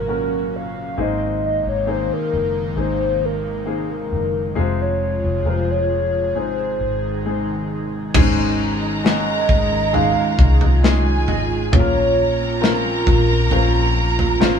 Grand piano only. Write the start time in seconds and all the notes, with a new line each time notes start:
Already playing: A#3 C#4 F#4 A#4 C5
0.08 A#3 C#4 F#4 A#4
0.98 G#2 A#3 C4 D#4 G#4
1.87 A#3 C4 D#4 G#4
2.76 A#3 C4 D#4 G#4
3.66 A#3 C4 D#4 G#4
4.55 C3 G#3 F4 G#4
5.45 C3 G#3 F4 A#4
6.35 G#2 G#3 C4 D#4 G#4
7.25 G#3 C4 D#4 G#4
8.14 G#2 G#3 C#4 D#4 G#4
9.04 G#3 C#4 D#4 F#4
9.93 G#3 C#4 D#4 G#4
10.83 G#3 C#4 D#4 G#4
11.72 A#2 A#3 C#4 F4 G#4
11.79 A#4
12.61 C4 C#4 F4 A#4
13.51 C4 C#4 F4 A#4
14.40 C4 C#4 F4 A#4